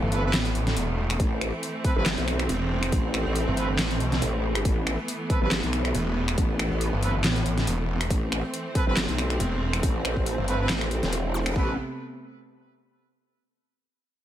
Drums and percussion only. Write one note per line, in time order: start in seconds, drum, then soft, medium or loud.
0.12 closed hi-hat medium
0.34 snare loud
0.34 clap medium
0.34 closed hi-hat medium
0.45 closed hi-hat soft
0.55 closed hi-hat medium
0.67 snare soft
0.67 closed hi-hat soft
0.77 closed hi-hat medium
1.10 finger snap medium
1.10 closed hi-hat medium
1.20 kick loud
1.20 closed hi-hat medium
1.41 finger snap medium
1.41 closed hi-hat medium
1.63 closed hi-hat medium
1.84 kick loud
1.84 closed hi-hat medium
2.06 snare loud
2.06 clap medium
2.06 closed hi-hat medium
2.18 closed hi-hat soft
2.28 finger snap medium
2.28 closed hi-hat medium
2.39 finger snap medium
2.39 closed hi-hat soft
2.49 closed hi-hat medium
2.83 finger snap medium
2.83 closed hi-hat medium
2.92 kick loud
2.92 closed hi-hat medium
3.14 finger snap medium
3.14 closed hi-hat soft
3.36 closed hi-hat medium
3.57 closed hi-hat medium
3.79 snare loud
3.79 clap medium
3.79 closed hi-hat medium
3.91 closed hi-hat soft
4.00 closed hi-hat medium
4.12 snare soft
4.12 closed hi-hat soft
4.22 closed hi-hat medium
4.55 finger snap medium
4.55 closed hi-hat medium
4.65 kick loud
4.65 closed hi-hat medium
4.87 finger snap medium
4.87 closed hi-hat soft
5.08 closed hi-hat medium
5.30 kick loud
5.30 closed hi-hat medium
5.51 snare loud
5.51 clap medium
5.51 closed hi-hat medium
5.63 closed hi-hat soft
5.73 finger snap medium
5.73 closed hi-hat medium
5.85 finger snap medium
5.85 closed hi-hat soft
5.95 closed hi-hat medium
6.28 finger snap medium
6.28 closed hi-hat medium
6.38 kick loud
6.38 closed hi-hat medium
6.59 finger snap medium
6.59 closed hi-hat medium
6.81 closed hi-hat medium
7.03 closed hi-hat medium
7.24 snare loud
7.24 clap medium
7.24 closed hi-hat medium
7.36 closed hi-hat soft
7.46 closed hi-hat medium
7.58 snare soft
7.58 closed hi-hat soft
7.67 closed hi-hat medium
8.01 finger snap medium
8.01 closed hi-hat medium
8.10 kick loud
8.10 closed hi-hat medium
8.32 finger snap medium
8.32 closed hi-hat medium
8.54 closed hi-hat medium
8.75 kick loud
8.75 closed hi-hat medium
8.97 snare loud
8.97 clap medium
8.97 closed hi-hat medium
9.09 closed hi-hat soft
9.18 finger snap medium
9.18 closed hi-hat medium
9.30 finger snap medium
9.30 closed hi-hat soft
9.40 closed hi-hat medium
9.73 finger snap medium
9.73 closed hi-hat medium
9.83 kick loud
9.83 closed hi-hat medium
10.05 finger snap medium
10.05 closed hi-hat medium
10.16 kick medium
10.26 closed hi-hat medium
10.48 closed hi-hat medium
10.69 snare loud
10.69 clap medium
10.69 closed hi-hat medium
10.81 finger snap medium
10.81 closed hi-hat soft
10.91 closed hi-hat medium
11.03 snare soft
11.03 closed hi-hat soft
11.13 closed hi-hat medium
11.46 finger snap medium
11.46 closed hi-hat medium
11.56 kick loud